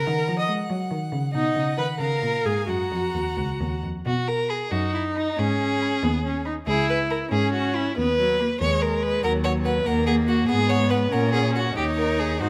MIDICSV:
0, 0, Header, 1, 5, 480
1, 0, Start_track
1, 0, Tempo, 427046
1, 81, Time_signature, 6, 3, 24, 8
1, 2002, Tempo, 454890
1, 4402, Tempo, 440852
1, 6322, Tempo, 431655
1, 8722, Tempo, 418118
1, 12082, Tempo, 430108
1, 13854, End_track
2, 0, Start_track
2, 0, Title_t, "Violin"
2, 0, Program_c, 0, 40
2, 82, Note_on_c, 0, 78, 52
2, 1484, Note_off_c, 0, 78, 0
2, 1510, Note_on_c, 0, 78, 49
2, 2236, Note_on_c, 0, 77, 45
2, 2252, Note_off_c, 0, 78, 0
2, 2958, Note_on_c, 0, 82, 47
2, 2974, Note_off_c, 0, 77, 0
2, 4183, Note_off_c, 0, 82, 0
2, 4874, Note_on_c, 0, 83, 63
2, 5052, Note_off_c, 0, 83, 0
2, 5603, Note_on_c, 0, 83, 49
2, 5786, Note_off_c, 0, 83, 0
2, 6325, Note_on_c, 0, 83, 60
2, 6500, Note_off_c, 0, 83, 0
2, 7031, Note_on_c, 0, 83, 53
2, 7211, Note_off_c, 0, 83, 0
2, 7754, Note_on_c, 0, 83, 60
2, 7930, Note_off_c, 0, 83, 0
2, 8482, Note_on_c, 0, 83, 56
2, 8662, Note_off_c, 0, 83, 0
2, 9209, Note_on_c, 0, 83, 65
2, 9389, Note_off_c, 0, 83, 0
2, 9922, Note_on_c, 0, 83, 54
2, 10103, Note_off_c, 0, 83, 0
2, 10162, Note_on_c, 0, 78, 54
2, 10254, Note_off_c, 0, 78, 0
2, 10405, Note_on_c, 0, 78, 59
2, 10497, Note_off_c, 0, 78, 0
2, 10646, Note_on_c, 0, 78, 55
2, 10738, Note_off_c, 0, 78, 0
2, 10887, Note_on_c, 0, 78, 59
2, 10979, Note_off_c, 0, 78, 0
2, 11121, Note_on_c, 0, 78, 55
2, 11213, Note_off_c, 0, 78, 0
2, 11368, Note_on_c, 0, 78, 47
2, 11460, Note_off_c, 0, 78, 0
2, 11603, Note_on_c, 0, 78, 52
2, 11695, Note_off_c, 0, 78, 0
2, 11843, Note_on_c, 0, 78, 64
2, 11935, Note_off_c, 0, 78, 0
2, 12086, Note_on_c, 0, 78, 56
2, 12175, Note_off_c, 0, 78, 0
2, 12330, Note_on_c, 0, 78, 55
2, 12420, Note_off_c, 0, 78, 0
2, 12569, Note_on_c, 0, 78, 49
2, 12658, Note_off_c, 0, 78, 0
2, 12809, Note_on_c, 0, 78, 53
2, 12898, Note_off_c, 0, 78, 0
2, 13041, Note_on_c, 0, 73, 59
2, 13763, Note_on_c, 0, 72, 56
2, 13779, Note_off_c, 0, 73, 0
2, 13854, Note_off_c, 0, 72, 0
2, 13854, End_track
3, 0, Start_track
3, 0, Title_t, "Violin"
3, 0, Program_c, 1, 40
3, 0, Note_on_c, 1, 82, 66
3, 431, Note_off_c, 1, 82, 0
3, 437, Note_on_c, 1, 87, 55
3, 553, Note_off_c, 1, 87, 0
3, 1510, Note_on_c, 1, 75, 57
3, 1999, Note_on_c, 1, 83, 60
3, 2015, Note_off_c, 1, 75, 0
3, 2224, Note_off_c, 1, 83, 0
3, 2230, Note_on_c, 1, 82, 54
3, 2712, Note_on_c, 1, 80, 55
3, 2728, Note_off_c, 1, 82, 0
3, 2960, Note_on_c, 1, 78, 53
3, 2976, Note_off_c, 1, 80, 0
3, 4167, Note_off_c, 1, 78, 0
3, 4409, Note_on_c, 1, 66, 79
3, 4644, Note_on_c, 1, 70, 87
3, 4661, Note_off_c, 1, 66, 0
3, 4888, Note_on_c, 1, 68, 72
3, 4904, Note_off_c, 1, 70, 0
3, 5118, Note_on_c, 1, 66, 74
3, 5135, Note_off_c, 1, 68, 0
3, 5359, Note_off_c, 1, 66, 0
3, 5367, Note_on_c, 1, 64, 61
3, 5454, Note_off_c, 1, 64, 0
3, 5607, Note_on_c, 1, 63, 72
3, 5853, Note_on_c, 1, 68, 86
3, 5869, Note_off_c, 1, 63, 0
3, 7038, Note_off_c, 1, 68, 0
3, 7272, Note_on_c, 1, 68, 83
3, 7496, Note_off_c, 1, 68, 0
3, 7521, Note_on_c, 1, 71, 83
3, 7610, Note_off_c, 1, 71, 0
3, 7749, Note_on_c, 1, 70, 75
3, 7838, Note_off_c, 1, 70, 0
3, 7989, Note_on_c, 1, 68, 78
3, 8215, Note_off_c, 1, 68, 0
3, 8221, Note_on_c, 1, 66, 76
3, 8469, Note_on_c, 1, 64, 74
3, 8486, Note_off_c, 1, 66, 0
3, 8708, Note_off_c, 1, 64, 0
3, 8715, Note_on_c, 1, 71, 96
3, 9432, Note_off_c, 1, 71, 0
3, 9441, Note_on_c, 1, 73, 91
3, 9688, Note_on_c, 1, 70, 76
3, 9706, Note_off_c, 1, 73, 0
3, 9931, Note_on_c, 1, 71, 91
3, 9948, Note_off_c, 1, 70, 0
3, 10162, Note_off_c, 1, 71, 0
3, 10169, Note_on_c, 1, 70, 96
3, 10261, Note_off_c, 1, 70, 0
3, 10401, Note_on_c, 1, 73, 92
3, 10493, Note_off_c, 1, 73, 0
3, 10640, Note_on_c, 1, 71, 81
3, 10883, Note_on_c, 1, 70, 93
3, 10901, Note_off_c, 1, 71, 0
3, 11114, Note_off_c, 1, 70, 0
3, 11121, Note_on_c, 1, 68, 81
3, 11213, Note_off_c, 1, 68, 0
3, 11359, Note_on_c, 1, 66, 86
3, 11594, Note_off_c, 1, 66, 0
3, 11599, Note_on_c, 1, 68, 98
3, 11839, Note_on_c, 1, 73, 94
3, 11857, Note_off_c, 1, 68, 0
3, 12079, Note_on_c, 1, 71, 78
3, 12096, Note_off_c, 1, 73, 0
3, 12321, Note_on_c, 1, 70, 90
3, 12338, Note_off_c, 1, 71, 0
3, 12560, Note_off_c, 1, 70, 0
3, 12566, Note_on_c, 1, 68, 79
3, 12796, Note_off_c, 1, 68, 0
3, 12805, Note_on_c, 1, 66, 81
3, 13034, Note_off_c, 1, 66, 0
3, 13041, Note_on_c, 1, 67, 89
3, 13130, Note_off_c, 1, 67, 0
3, 13270, Note_on_c, 1, 70, 81
3, 13518, Note_on_c, 1, 68, 77
3, 13534, Note_off_c, 1, 70, 0
3, 13759, Note_on_c, 1, 66, 69
3, 13776, Note_off_c, 1, 68, 0
3, 13854, Note_off_c, 1, 66, 0
3, 13854, End_track
4, 0, Start_track
4, 0, Title_t, "Viola"
4, 0, Program_c, 2, 41
4, 0, Note_on_c, 2, 70, 74
4, 432, Note_off_c, 2, 70, 0
4, 438, Note_on_c, 2, 75, 59
4, 553, Note_off_c, 2, 75, 0
4, 1509, Note_on_c, 2, 63, 70
4, 1965, Note_off_c, 2, 63, 0
4, 2003, Note_on_c, 2, 71, 74
4, 2087, Note_off_c, 2, 71, 0
4, 2237, Note_on_c, 2, 70, 71
4, 2714, Note_on_c, 2, 68, 65
4, 2730, Note_off_c, 2, 70, 0
4, 2950, Note_off_c, 2, 68, 0
4, 2956, Note_on_c, 2, 66, 61
4, 4141, Note_off_c, 2, 66, 0
4, 5114, Note_on_c, 2, 63, 70
4, 5805, Note_off_c, 2, 63, 0
4, 5855, Note_on_c, 2, 61, 73
4, 6560, Note_on_c, 2, 59, 63
4, 6577, Note_off_c, 2, 61, 0
4, 6793, Note_off_c, 2, 59, 0
4, 6799, Note_on_c, 2, 61, 57
4, 7026, Note_off_c, 2, 61, 0
4, 7033, Note_on_c, 2, 63, 61
4, 7122, Note_off_c, 2, 63, 0
4, 7275, Note_on_c, 2, 64, 74
4, 7975, Note_off_c, 2, 64, 0
4, 7985, Note_on_c, 2, 61, 69
4, 8706, Note_off_c, 2, 61, 0
4, 8727, Note_on_c, 2, 59, 67
4, 8965, Note_off_c, 2, 59, 0
4, 8970, Note_on_c, 2, 54, 56
4, 9204, Note_off_c, 2, 54, 0
4, 9211, Note_on_c, 2, 58, 55
4, 9303, Note_off_c, 2, 58, 0
4, 9453, Note_on_c, 2, 56, 62
4, 10168, Note_on_c, 2, 54, 63
4, 10185, Note_off_c, 2, 56, 0
4, 10873, Note_off_c, 2, 54, 0
4, 10880, Note_on_c, 2, 58, 72
4, 11603, Note_on_c, 2, 59, 71
4, 11620, Note_off_c, 2, 58, 0
4, 12311, Note_off_c, 2, 59, 0
4, 12317, Note_on_c, 2, 61, 73
4, 13020, Note_off_c, 2, 61, 0
4, 13035, Note_on_c, 2, 63, 76
4, 13744, Note_off_c, 2, 63, 0
4, 13765, Note_on_c, 2, 63, 69
4, 13854, Note_off_c, 2, 63, 0
4, 13854, End_track
5, 0, Start_track
5, 0, Title_t, "Cello"
5, 0, Program_c, 3, 42
5, 78, Note_on_c, 3, 51, 60
5, 299, Note_off_c, 3, 51, 0
5, 314, Note_on_c, 3, 53, 62
5, 536, Note_off_c, 3, 53, 0
5, 543, Note_on_c, 3, 56, 50
5, 768, Note_off_c, 3, 56, 0
5, 784, Note_on_c, 3, 54, 59
5, 1008, Note_off_c, 3, 54, 0
5, 1021, Note_on_c, 3, 51, 57
5, 1248, Note_off_c, 3, 51, 0
5, 1265, Note_on_c, 3, 49, 59
5, 1493, Note_off_c, 3, 49, 0
5, 1509, Note_on_c, 3, 47, 51
5, 1738, Note_off_c, 3, 47, 0
5, 1754, Note_on_c, 3, 49, 58
5, 1983, Note_off_c, 3, 49, 0
5, 2001, Note_on_c, 3, 51, 49
5, 2219, Note_off_c, 3, 51, 0
5, 2231, Note_on_c, 3, 49, 53
5, 2455, Note_off_c, 3, 49, 0
5, 2471, Note_on_c, 3, 46, 49
5, 2697, Note_off_c, 3, 46, 0
5, 2711, Note_on_c, 3, 44, 53
5, 2939, Note_off_c, 3, 44, 0
5, 2948, Note_on_c, 3, 42, 43
5, 3179, Note_off_c, 3, 42, 0
5, 3200, Note_on_c, 3, 41, 52
5, 3425, Note_off_c, 3, 41, 0
5, 3442, Note_on_c, 3, 39, 43
5, 3666, Note_off_c, 3, 39, 0
5, 3684, Note_on_c, 3, 37, 47
5, 3907, Note_off_c, 3, 37, 0
5, 3927, Note_on_c, 3, 39, 50
5, 4151, Note_off_c, 3, 39, 0
5, 4169, Note_on_c, 3, 41, 43
5, 4387, Note_off_c, 3, 41, 0
5, 4404, Note_on_c, 3, 47, 66
5, 4965, Note_off_c, 3, 47, 0
5, 5116, Note_on_c, 3, 42, 68
5, 5696, Note_off_c, 3, 42, 0
5, 5850, Note_on_c, 3, 44, 67
5, 6410, Note_off_c, 3, 44, 0
5, 6555, Note_on_c, 3, 39, 71
5, 7122, Note_off_c, 3, 39, 0
5, 7273, Note_on_c, 3, 37, 69
5, 7838, Note_off_c, 3, 37, 0
5, 7987, Note_on_c, 3, 44, 69
5, 8569, Note_off_c, 3, 44, 0
5, 8721, Note_on_c, 3, 39, 62
5, 9299, Note_off_c, 3, 39, 0
5, 9446, Note_on_c, 3, 39, 72
5, 10014, Note_off_c, 3, 39, 0
5, 10160, Note_on_c, 3, 39, 65
5, 10792, Note_off_c, 3, 39, 0
5, 10874, Note_on_c, 3, 39, 68
5, 11510, Note_off_c, 3, 39, 0
5, 11601, Note_on_c, 3, 44, 59
5, 12237, Note_off_c, 3, 44, 0
5, 12321, Note_on_c, 3, 46, 60
5, 12952, Note_off_c, 3, 46, 0
5, 13035, Note_on_c, 3, 39, 52
5, 13761, Note_on_c, 3, 44, 56
5, 13777, Note_off_c, 3, 39, 0
5, 13854, Note_off_c, 3, 44, 0
5, 13854, End_track
0, 0, End_of_file